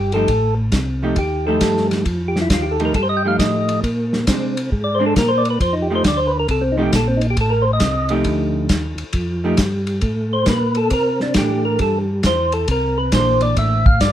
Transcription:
Already playing: tonewheel organ G1 G4
0.12 hollow-body jazz guitar F3 A3 D#4 G4, tonewheel organ A4, ride
0.28 tonewheel organ A1, kick, ride
0.72 tonewheel organ C2, kick, snare, hi-hat pedal, ride
1.03 hollow-body jazz guitar F3 A3 D#4 G4
1.16 tonewheel organ D#2 G4, kick, ride
1.47 hollow-body jazz guitar F3 A3 D#4 G4, tonewheel organ A4
1.61 tonewheel organ G2, kick, snare, hi-hat pedal, ride
1.77 snare
1.91 snare, ride
2.05 tonewheel organ F2, kick, ride
2.28 tonewheel organ G4
2.36 snare
2.41 tonewheel organ E4
2.50 tonewheel organ D#2 F4, kick, snare, hi-hat pedal, ride
2.62 tonewheel organ G4
2.71 tonewheel organ A4
2.80 hollow-body jazz guitar F3 A3 D#4 G4, ride
2.85 tonewheel organ A#4
2.94 tonewheel organ G2 A4, kick, ride
3.03 tonewheel organ C5
3.09 tonewheel organ D#5
3.17 tonewheel organ G5
3.25 hollow-body jazz guitar F3 A3 D#4 G4, tonewheel organ F5
3.39 tonewheel organ A2 D#5, kick, snare, hi-hat pedal, ride
3.69 ride
3.83 tonewheel organ A#2, kick, ride
4.13 snare
4.27 tonewheel organ C3, hollow-body jazz guitar G#3 C4 D4, kick, snare, hi-hat pedal, ride
4.57 ride
4.72 tonewheel organ G#2, kick
4.84 tonewheel organ D5
4.95 tonewheel organ C5
4.99 hollow-body jazz guitar G#3 C4 D4
5.06 tonewheel organ A4
5.16 tonewheel organ A#2 A#4, kick, snare, hi-hat pedal, ride
5.28 tonewheel organ C5
5.38 tonewheel organ D5
5.45 ride
5.50 tonewheel organ B4
5.60 tonewheel organ F2 C5, kick, ride
5.73 tonewheel organ D#4
5.82 tonewheel organ G4
5.90 hollow-body jazz guitar F3 A3 D#4 G4
5.95 tonewheel organ C5
6.04 tonewheel organ D2 D5, kick, snare, hi-hat pedal, ride
6.17 tonewheel organ C5
6.27 tonewheel organ B4
6.39 tonewheel organ A#4
6.48 tonewheel organ C2 A4, kick, ride
6.61 tonewheel organ C4
6.72 tonewheel organ D#4
6.77 hollow-body jazz guitar F3 A3 D#4 G4
6.83 tonewheel organ G4
6.93 tonewheel organ A#1 A4, kick, snare, hi-hat pedal, ride
7.08 tonewheel organ C4
7.17 tonewheel organ D#4
7.21 ride
7.30 tonewheel organ G4
7.36 tonewheel organ A1, kick, ride
7.41 tonewheel organ A4
7.50 tonewheel organ A#4
7.62 tonewheel organ C5
7.73 tonewheel organ D#5
7.80 tonewheel organ C2, kick, snare, hi-hat pedal, ride
8.09 hollow-body jazz guitar F3 A3 D#4 G4, ride
8.24 tonewheel organ D2, kick, ride
8.69 tonewheel organ D#2, kick, snare, hi-hat pedal, ride
8.96 tonewheel organ D#2, ride
9.13 tonewheel organ F2, kick, ride
9.44 hollow-body jazz guitar F3 A3 D#4 G4
9.57 tonewheel organ G2, kick, snare, hi-hat pedal, ride
9.87 ride
10.01 tonewheel organ A2, kick, ride
10.33 tonewheel organ C5
10.46 tonewheel organ A#2 B4, kick, snare, hi-hat pedal, ride
10.75 tonewheel organ A4, ride
10.90 tonewheel organ C3 A#4, kick, ride
11.20 tonewheel organ D4, snare
11.34 tonewheel organ A2 G4, hollow-body jazz guitar E3, kick, snare, hi-hat pedal, ride
11.38 hollow-body jazz guitar D4
11.65 tonewheel organ A#4
11.79 tonewheel organ G2 A4, kick, ride
12.23 tonewheel organ E2 C5, kick, snare, hi-hat pedal, ride
12.52 tonewheel organ A4, ride
12.68 tonewheel organ C2 A#4, kick, ride
12.98 tonewheel organ B4
13.12 tonewheel organ A#1 C5, hollow-body jazz guitar E3 A#3 D4, kick, snare, hi-hat pedal, ride
13.41 tonewheel organ D5, ride
13.57 tonewheel organ A1 E5, kick, ride
13.86 tonewheel organ F5, kick
14.01 tonewheel organ G1 D5, kick, snare, hi-hat pedal, ride

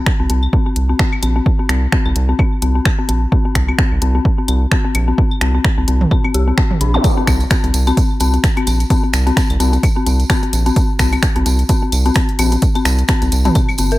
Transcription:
0.06 finger snap, kick
0.20 analog synth bass C2, synth bell C4
0.30 analog synth bass C2, synth bell C4, closed hi-hat
0.43 claves
0.53 synth bell C4, kick
0.66 synth bell C4
0.76 analog synth bass C2, closed hi-hat
0.89 synth bell C4
0.99 synth bell C4, finger snap, kick
1.12 claves
1.23 analog synth bass A#1, synth bell C4, closed hi-hat, claves
1.36 synth bell C4
1.46 kick
1.59 synth bell C4
1.69 analog synth bass C2, synth bell C4, finger snap, closed hi-hat
1.92 synth bell C4, finger snap, kick
2.06 analog synth bass C2, synth bell C4, claves
2.16 analog synth bass C2, closed hi-hat
2.29 synth bell C4
2.39 synth bell C4, kick, claves
2.62 analog synth bass C2, synth bell C4, closed hi-hat
2.75 synth bell C4
2.85 finger snap, kick, claves
2.99 synth bell C4
3.09 analog synth bass A#1, synth bell C4, closed hi-hat
3.32 synth bell C4, kick
3.45 synth bell C4
3.55 analog synth bass C2, finger snap, kick, closed hi-hat
3.68 synth bell C4, claves
3.78 synth bell C4, finger snap, kick
3.92 analog synth bass C2
4.02 analog synth bass C2, synth bell C4, closed hi-hat
4.15 synth bell C4
4.25 kick
4.38 synth bell C4
4.48 analog synth bass C2, synth bell C4, closed hi-hat, claves
4.72 synth bell C4, finger snap, kick
4.85 synth bell C4
4.95 analog synth bass A#1, closed hi-hat, claves
5.08 synth bell C4
5.18 synth bell C4, kick
5.31 claves
5.41 analog synth bass C2, synth bell C4, finger snap, closed hi-hat
5.55 synth bell C4
5.64 finger snap, kick
5.78 analog synth bass C2, synth bell C4
5.88 analog synth bass C2, synth bell C4, closed hi-hat
6.01 mid tom
6.11 synth bell C4, kick, claves
6.24 synth bell C4, claves
6.34 analog synth bass C2, synth bell G4, closed hi-hat
6.48 synth bell C4
6.58 synth bell C4, finger snap, kick
6.71 mid tom
6.81 analog synth bass A#1, synth bell D4, closed hi-hat
6.94 synth bell C4, zap, claves
7.04 kick, closed hi-hat, tambourine, claves
7.17 synth bell C4
7.27 analog synth bass C2, synth bell C4, finger snap, kick, closed hi-hat, tambourine, claves
7.41 closed hi-hat, tambourine
7.50 synth bell C4, finger snap, kick, closed hi-hat, tambourine
7.64 analog synth bass C2, synth bell C4, closed hi-hat
7.74 analog synth bass C2, closed hi-hat, tambourine
7.87 synth bell C4, closed hi-hat, tambourine, claves
7.97 synth bell C4, kick, closed hi-hat, tambourine
8.20 analog synth bass C2, synth bell C4, closed hi-hat, tambourine
8.34 synth bell C4, closed hi-hat, tambourine
8.44 finger snap, kick, closed hi-hat, tambourine
8.57 synth bell C4, closed hi-hat, claves
8.67 analog synth bass A#1, synth bell C4, closed hi-hat, tambourine, claves
8.80 closed hi-hat, tambourine
8.90 synth bell C4, kick, closed hi-hat, tambourine
9.04 synth bell C4
9.13 analog synth bass C2, finger snap, closed hi-hat, tambourine
9.27 synth bell C4, closed hi-hat, tambourine
9.37 finger snap, kick, closed hi-hat, tambourine
9.50 analog synth bass C2, closed hi-hat, claves
9.60 analog synth bass C2, synth bell C4, closed hi-hat, tambourine
9.73 synth bell C4, closed hi-hat, tambourine
9.83 kick, closed hi-hat, tambourine, claves
9.96 synth bell C4
10.06 analog synth bass C2, synth bell C4, closed hi-hat, tambourine
10.20 closed hi-hat, tambourine
10.30 synth bell C4, finger snap, kick, closed hi-hat, tambourine, claves
10.43 synth bell C4, closed hi-hat
10.53 analog synth bass A#1, closed hi-hat, tambourine
10.66 synth bell C4, closed hi-hat, tambourine
10.76 synth bell C4, kick, closed hi-hat, tambourine
10.99 analog synth bass C2, synth bell C4, finger snap, kick, closed hi-hat, tambourine
11.12 synth bell C4, closed hi-hat, tambourine, claves
11.23 finger snap, kick, closed hi-hat, tambourine
11.36 analog synth bass C2, synth bell C4, closed hi-hat
11.46 analog synth bass C2, synth bell C4, closed hi-hat, tambourine
11.59 closed hi-hat, tambourine
11.69 synth bell C4, kick, closed hi-hat, tambourine
11.82 synth bell C4
11.92 analog synth bass C2, closed hi-hat, tambourine, claves
12.06 synth bell C4, closed hi-hat, tambourine
12.14 synth bell C4, finger snap, kick, closed hi-hat, tambourine
12.29 closed hi-hat
12.39 analog synth bass A#1, synth bell C4, closed hi-hat, tambourine, claves
12.52 synth bell C4, closed hi-hat, tambourine
12.62 kick, closed hi-hat, tambourine
12.75 synth bell C4, closed hi-hat, tambourine, claves
12.85 analog synth bass C2, synth bell C4, finger snap, closed hi-hat, tambourine
12.99 closed hi-hat, tambourine
13.08 synth bell C4, finger snap, kick, closed hi-hat, tambourine
13.22 analog synth bass C2, synth bell C4, closed hi-hat, tambourine
13.32 analog synth bass C2, closed hi-hat, tambourine
13.45 synth bell C4, closed hi-hat, mid tom, tambourine
13.55 synth bell C4, kick, closed hi-hat, tambourine, claves
13.69 tambourine, claves
13.78 analog synth bass G1, synth bell C4, closed hi-hat, tambourine
13.91 synth bell A#4, closed hi-hat, tambourine

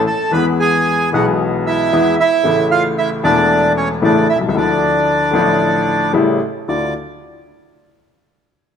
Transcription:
0.06 bandoneon A4 A5
0.31 upright piano E2 E3 G#3 B3, bandoneon B4 B5
0.36 upright piano G#4
0.60 bandoneon G#4 G#5
1.12 upright piano B1 B2 E3 G#3 B3 G#4, bandoneon F#4 F#5
1.67 bandoneon E4 E5
1.93 upright piano E2 E3 G#3 B3 G#4
2.20 bandoneon E4 E5
2.43 upright piano A1 A2 C#3 E3 A3
2.48 upright piano E4
2.71 bandoneon F4 F5
2.98 bandoneon E4 E5
3.23 upright piano E1 E2 E3 A3 E4, bandoneon D4 D5
3.77 bandoneon C#4 C#5
4.02 upright piano A1 A2 C#3 E3 A3 E4, bandoneon D4 D5
4.29 bandoneon E4 E5
4.35 upright piano B1
4.41 upright piano C2
4.49 upright piano C#2, bandoneon E5
4.53 upright piano D2 D3 F3 A3
4.57 bandoneon D4 D5, upright piano E4
5.31 upright piano A1 A2 D3 F3 A3
5.36 upright piano E4
6.13 upright piano A1 A2 C#3 G3 A3 E4
6.68 upright piano D2 D4 E4 F4, bandoneon D5

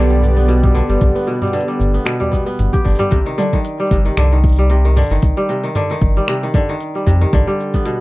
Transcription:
Already playing: sub bass B1, kora D3 B3, analog synth pad B3 G4 D5
0.10 kora G3, open hi-hat
0.22 mid tom, shaker
0.36 kora B3, shaker
0.48 kora B2, open hi-hat, shaker
0.63 kora G3, kick, mid tom, shaker
0.75 kora D3, shaker
0.89 sub bass G1, kora G3, open hi-hat, shaker
1.01 sub bass B1, kick, mid tom, open hi-hat, shaker
1.16 kora B3, open hi-hat, shaker
1.22 shaker
1.27 kora B2, shaker
1.35 shaker
1.42 kora G3, mid tom, open hi-hat, shaker
1.48 open hi-hat
1.53 kora D3, open hi-hat, shaker
1.61 open hi-hat
1.68 kora G3, open hi-hat, shaker
1.80 sub bass G1, mid tom, shaker
1.94 kora B3, open hi-hat, shaker
2.05 kora B2, finger snap, open hi-hat, shaker
2.20 kora G3, mid tom, open hi-hat, shaker
2.31 kora B3, kick, shaker
2.46 kora B3, open hi-hat, shaker
2.59 sub bass G1, mid tom, open hi-hat, shaker
2.73 kora G4, kick, open hi-hat, shaker
2.84 sub bass G1, kora D3, kick, shaker
2.89 shaker
2.92 shaker
2.95 shaker
2.98 kora G3, mid tom, open hi-hat, shaker
3.11 sub bass C2, kora C3, kick, open hi-hat, shaker
3.26 kora D#3, open hi-hat, shaker
3.38 kora D3, mid tom, shaker
3.53 kora D#3, kick, open hi-hat
3.65 open hi-hat, shaker
3.80 kora G3, open hi-hat
3.87 sub bass G1, kora C3, kick, open hi-hat
3.92 shaker
3.96 open hi-hat
4.05 kora D#3, shaker
4.17 sub bass C2, kora D3, finger snap, mid tom, open hi-hat, shaker
4.32 kora D#3, open hi-hat
4.44 kick, shaker
4.48 shaker
4.52 shaker
4.56 kora G3, shaker
4.70 kora C3, open hi-hat, shaker
4.85 kora D#3, shaker
4.96 kora D3, mid tom, shaker
5.02 shaker
5.06 shaker
5.10 sub bass G1, kora D#3, open hi-hat, shaker
5.15 shaker
5.20 sub bass C2, kick, open hi-hat, shaker
5.23 shaker
5.37 kora G3, open hi-hat, shaker
5.49 kora C3, shaker
5.64 kora D#3, open hi-hat, shaker
5.75 kora D3, mid tom, open hi-hat, shaker
5.90 kora D#3, open hi-hat
6.01 sub bass G1, kick
6.17 kora G3, shaker
6.28 kora C3, finger snap, open hi-hat, shaker
6.43 kora D#3
6.54 kora D3, kick, mid tom, shaker
6.69 kora D#3, shaker
6.81 open hi-hat, shaker
6.95 kora G3, shaker
7.06 sub bass F2, kora C3, kick, shaker
7.21 kora D#3, open hi-hat, shaker
7.33 sub bass B1, kora D3, kick, mid tom, open hi-hat, shaker
7.47 kora G3, open hi-hat, shaker
7.60 shaker
7.74 kora B3, kick, open hi-hat, shaker
7.85 kora B2, open hi-hat, shaker

